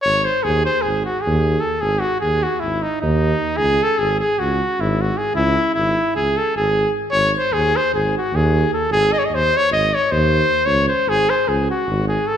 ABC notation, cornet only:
X:1
M:9/8
L:1/16
Q:3/8=102
K:none
V:1 name="Cornet"
^c2 ^B2 ^G2 B2 G2 ^F2 G4 A2 | ^G2 ^F2 G2 F2 E2 ^D2 D6 | ^G2 A2 G2 G2 ^F4 E2 F2 G2 | E4 E4 ^G2 A2 G4 z2 |
^c2 ^B2 ^G2 B2 G2 ^F2 G4 A2 | ^G2 ^d/2 ^c/2 d ^B2 c2 d2 c2 B6 | ^c2 ^B2 ^G2 B2 G2 ^F4 G2 A2 |]